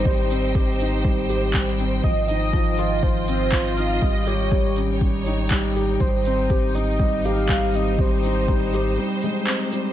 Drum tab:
SH |-x-x-x-x|-x-x-x-x|-x-x-x-x|-x-x-x-x|
CP |------x-|------x-|------x-|------x-|
BD |o-o-o-o-|o-o-o-o-|o-o-o-o-|o-o-o-o-|

SH |-x-x-x-x|
CP |------x-|
BD |o-o-----|